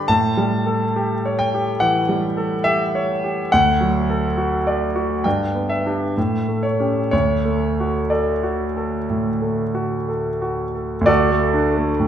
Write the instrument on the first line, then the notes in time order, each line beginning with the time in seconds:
grand piano
Already playing: D3 G3 G4 B4 D5 B5 C#6
0.08 A2 A5
0.38 G3
0.66 A4
0.96 G4
1.25 C#5
1.39 G5
1.54 G4
1.80 E3 F#5
2.09 G3
2.37 A4
2.64 G4 E5
2.95 C#5
3.24 G4
3.52 D2 F#5
3.81 F#3
4.10 A4
4.38 F#4
4.67 D5
4.96 F#4
5.24 G2 G5
5.55 B3
5.69 E5
5.86 D4 G4
6.17 A2
6.48 A3
6.63 C#5
6.80 C#4 G4
7.11 D2 C#5
7.45 A3
7.80 F#4
8.10 A4 D5
8.43 F#4
8.77 A4
9.10 A2
9.42 A3
9.75 F#4
10.09 A4
10.42 F#4
10.74 A4
11.01 D2
11.06 F#4 A4 D5
11.31 A3
11.53 D4
11.77 A3
12.00 A2